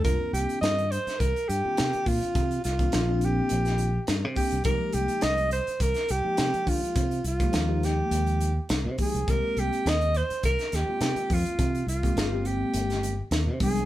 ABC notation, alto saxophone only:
X:1
M:4/4
L:1/8
Q:"Swing 16ths" 1/4=104
K:Cm
V:1 name="Alto saxophone"
B G e c B G2 F- | F F2 G3 z G | B G e c B G2 F- | F F2 G3 z A |
B G e c B G2 F- | F F2 G3 z A |]